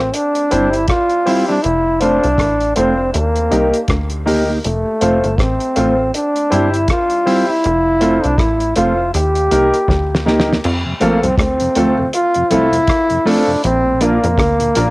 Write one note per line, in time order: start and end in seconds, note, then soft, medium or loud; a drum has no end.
0.00 0.12 A1 medium
0.00 0.16 C4 medium
0.14 0.75 D4 medium
0.14 closed hi-hat medium
0.35 closed hi-hat soft
0.51 0.87 G1 medium
0.51 0.68 G3 medium
0.51 0.73 C4 medium
0.51 0.68 C4 medium
0.51 0.73 E4 medium
0.51 0.68 E4 medium
0.51 0.74 G4 medium
0.51 0.74 C5 medium
0.51 closed hi-hat medium
0.73 0.88 E4 medium
0.73 closed hi-hat soft
0.88 1.44 F4 loud
0.88 kick loud
0.88 cross-stick loud
0.88 closed hi-hat medium
1.10 closed hi-hat soft
1.26 1.43 G3 medium
1.26 1.48 C4 medium
1.26 1.43 C4 medium
1.26 1.48 E4 medium
1.26 1.43 E4 medium
1.26 1.49 G4 medium
1.26 1.49 C5 loud
1.26 open hi-hat medium
1.48 1.58 G3 medium
1.48 1.58 C4 medium
1.48 1.64 D4 medium
1.48 1.57 E4 medium
1.63 2.20 F1 loud
1.63 2.01 E4 loud
1.63 closed hi-hat medium
2.00 2.18 A3 medium
2.00 2.23 C4 medium
2.00 2.18 C4 medium
2.00 2.72 D4 medium
2.00 2.23 F4 medium
2.00 2.18 F4 medium
2.00 2.24 A4 medium
2.00 2.24 C5 medium
2.00 closed hi-hat medium
2.24 2.38 C2 medium
2.24 closed hi-hat soft
2.38 2.74 A1 medium
2.38 kick loud
2.38 cross-stick medium
2.38 closed hi-hat medium
2.60 closed hi-hat soft
2.76 3.12 F1 medium
2.76 2.92 A3 medium
2.76 2.98 C4 medium
2.76 3.11 C4 medium
2.76 2.93 C4 medium
2.76 2.98 F4 medium
2.76 2.93 F4 medium
2.76 2.97 A4 medium
2.76 2.97 C5 medium
2.76 closed hi-hat medium
2.98 3.04 A4 soft
2.98 3.04 C5 soft
3.14 3.49 D#2 loud
3.14 3.85 A#3 medium
3.14 closed hi-hat medium
3.36 closed hi-hat soft
3.50 3.72 C2 medium
3.50 3.73 A#3 medium
3.50 3.67 A#3 medium
3.50 3.73 D#4 medium
3.50 3.67 D#4 medium
3.50 3.73 G4 medium
3.50 3.68 G4 medium
3.50 3.74 A#4 medium
3.50 closed hi-hat medium
3.74 closed hi-hat soft
3.88 4.60 D2 medium
3.88 kick medium
3.88 cross-stick loud
3.88 closed hi-hat medium
4.10 closed hi-hat soft
4.26 4.48 A#3 medium
4.26 4.42 A#3 medium
4.26 4.48 D#4 medium
4.26 4.42 D#4 medium
4.26 4.49 G4 medium
4.26 4.43 G4 medium
4.26 4.49 A#4 medium
4.26 open hi-hat medium
4.49 4.58 A#3 soft
4.49 4.58 D#4 medium
4.49 4.57 G4 medium
4.64 4.85 F1 medium
4.64 5.41 A3 medium
4.64 closed hi-hat medium
5.01 5.22 F1 medium
5.01 5.17 A3 medium
5.01 5.23 C4 medium
5.01 5.18 C4 medium
5.01 5.24 F4 medium
5.01 5.18 F4 medium
5.01 5.24 A4 medium
5.01 5.24 C5 medium
5.01 closed hi-hat medium
5.24 5.38 G1 medium
5.24 closed hi-hat soft
5.38 5.59 A1 medium
5.38 6.14 C4 medium
5.38 kick loud
5.38 cross-stick loud
5.38 closed hi-hat medium
5.60 closed hi-hat soft
5.75 6.12 A1 medium
5.75 5.92 A3 medium
5.75 5.98 C4 medium
5.75 5.93 C4 medium
5.75 5.98 F4 medium
5.75 5.93 F4 medium
5.75 5.97 A4 medium
5.75 5.96 C5 medium
5.75 closed hi-hat medium
5.98 6.04 A4 soft
5.98 6.04 C5 soft
6.14 6.75 D4 medium
6.14 closed hi-hat medium
6.36 closed hi-hat soft
6.50 6.87 G1 medium
6.50 6.67 G3 medium
6.50 6.73 C4 medium
6.50 6.68 C4 medium
6.50 6.73 E4 medium
6.50 6.68 E4 medium
6.50 6.73 G4 medium
6.50 6.74 C5 loud
6.50 closed hi-hat medium
6.74 6.89 E4 medium
6.74 closed hi-hat medium
6.88 7.50 F4 medium
6.88 kick medium
6.88 cross-stick loud
6.88 closed hi-hat medium
7.10 closed hi-hat soft
7.26 7.42 G3 medium
7.26 7.48 C4 medium
7.26 7.43 C4 medium
7.26 7.48 E4 medium
7.26 7.43 E4 medium
7.26 7.49 G4 medium
7.26 7.49 C5 medium
7.26 open hi-hat medium
7.48 8.25 E4 loud
7.48 muted clean electric guitar stroke soft
7.64 8.20 F1 loud
7.64 closed hi-hat medium
8.00 8.17 A3 medium
8.00 8.23 C4 medium
8.00 8.17 C4 medium
8.00 8.23 F4 medium
8.00 8.17 F4 medium
8.00 8.23 A4 medium
8.00 8.24 C5 medium
8.00 closed hi-hat medium
8.23 8.38 C2 medium
8.23 8.41 D4 medium
8.23 closed hi-hat soft
8.38 8.73 A1 medium
8.38 8.77 E4 medium
8.38 kick loud
8.38 cross-stick loud
8.38 closed hi-hat medium
8.60 closed hi-hat soft
8.76 9.12 F1 medium
8.76 8.92 A3 medium
8.76 8.98 C4 medium
8.76 8.92 C4 medium
8.76 8.98 F4 medium
8.76 8.93 F4 medium
8.76 9.12 F4 medium
8.76 8.97 A4 medium
8.76 8.97 C5 medium
8.76 closed hi-hat medium
8.98 9.04 A4 soft
8.98 9.04 C5 soft
9.14 9.49 D#2 loud
9.14 10.22 G4 medium
9.14 closed hi-hat medium
9.35 closed hi-hat soft
9.51 9.72 C2 medium
9.51 9.73 A#3 medium
9.51 9.67 A#3 medium
9.51 9.73 D#4 medium
9.51 9.67 D#4 medium
9.51 9.74 G4 medium
9.51 9.68 G4 medium
9.51 9.74 A#4 loud
9.51 closed hi-hat medium
9.74 muted clean electric guitar stroke soft
9.74 closed hi-hat soft
9.88 10.60 D2 medium
9.88 kick loud
9.88 snare soft
10.15 snare medium
10.26 10.48 A#3 medium
10.26 10.42 A#3 medium
10.26 10.48 D#4 medium
10.26 10.42 D#4 medium
10.26 10.48 G4 medium
10.26 10.43 G4 medium
10.26 10.49 A#4 medium
10.26 snare medium
10.40 snare medium
10.48 10.57 A#3 soft
10.48 10.57 D#4 medium
10.48 10.57 G4 medium
10.53 snare medium
10.64 10.85 F2 loud
10.64 crash medium
10.86 10.94 F2 medium
10.86 10.94 C3 medium
11.00 11.22 A#1 medium
11.00 11.12 F3 medium
11.00 11.13 A3 medium
11.00 11.23 A3 medium
11.00 11.17 A3 medium
11.00 11.25 A#3 medium
11.00 11.13 C4 medium
11.00 11.23 C4 medium
11.00 11.17 C4 loud
11.00 11.23 F4 medium
11.00 11.17 F4 medium
11.00 11.24 A4 loud
11.00 closed hi-hat medium
11.22 11.38 C2 medium
11.22 11.31 F2 medium
11.22 11.31 C3 medium
11.22 11.38 C4 medium
11.22 closed hi-hat soft
11.38 11.59 D2 medium
11.38 12.10 C4 medium
11.38 kick loud
11.38 cross-stick loud
11.38 closed hi-hat medium
11.60 11.69 F2 medium
11.60 11.69 C3 medium
11.60 muted clean electric guitar stroke soft
11.60 closed hi-hat medium
11.75 12.11 D2 medium
11.75 11.88 F3 medium
11.75 11.98 A3 medium
11.75 11.92 A3 medium
11.75 11.88 A3 medium
11.75 11.98 C4 medium
11.75 11.92 C4 medium
11.75 11.88 C4 medium
11.75 11.97 F4 medium
11.75 11.92 F4 medium
11.75 11.97 A4 loud
11.75 closed hi-hat medium
11.98 12.06 F2 medium
11.98 12.06 C3 medium
11.98 12.04 F4 soft
11.98 12.04 A4 soft
12.13 12.53 F4 loud
12.13 closed hi-hat medium
12.34 12.44 F2 medium
12.34 12.44 C3 medium
12.34 closed hi-hat medium
12.50 12.86 C2 medium
12.50 12.62 F3 medium
12.50 12.73 A3 medium
12.50 12.63 A3 medium
12.50 12.67 A3 medium
12.50 12.63 C4 medium
12.50 12.73 C4 medium
12.50 12.67 C4 medium
12.50 13.29 E4 loud
12.50 12.73 F4 medium
12.50 12.67 F4 medium
12.50 12.74 A4 loud
12.50 closed hi-hat medium
12.72 12.81 F2 medium
12.72 12.81 C3 medium
12.72 closed hi-hat medium
12.87 kick loud
12.87 cross-stick loud
12.87 closed hi-hat medium
13.10 13.19 F2 medium
13.10 13.19 C3 medium
13.10 closed hi-hat soft
13.25 13.37 F3 medium
13.25 13.41 A3 medium
13.25 13.48 A3 loud
13.25 13.38 A3 medium
13.25 13.38 C4 medium
13.25 13.42 C4 loud
13.25 13.48 C4 medium
13.25 13.64 D4 medium
13.25 13.48 F4 medium
13.25 13.42 F4 loud
13.25 13.48 A4 loud
13.25 open hi-hat medium
13.47 13.56 F2 medium
13.47 13.56 C3 medium
13.64 14.19 A#1 loud
13.64 14.04 C4 loud
13.64 closed hi-hat medium
13.85 13.93 A#2 medium
14.00 14.13 F3 medium
14.00 14.13 A#3 medium
14.00 14.23 A#3 medium
14.00 14.16 A#3 medium
14.00 14.90 A#3 medium
14.00 14.23 D4 medium
14.00 14.17 D4 medium
14.00 14.13 D4 medium
14.00 14.23 F4 medium
14.00 14.17 F4 loud
14.00 14.23 A#4 medium
14.00 closed hi-hat medium
14.22 14.38 F2 medium
14.22 14.31 A#2 medium
14.22 closed hi-hat medium
14.38 14.73 D2 medium
14.38 kick loud
14.38 cross-stick loud
14.38 closed hi-hat medium
14.60 14.68 A#2 medium
14.60 muted clean electric guitar stroke soft
14.60 closed hi-hat medium
14.75 14.90 A#1 medium
14.75 14.87 F3 medium
14.75 14.87 A#3 medium
14.75 14.90 A#3 medium
14.75 14.90 D4 medium
14.75 14.88 D4 medium
14.75 14.90 D4 medium
14.75 14.90 F4 medium
14.75 14.90 A#4 loud
14.75 closed hi-hat medium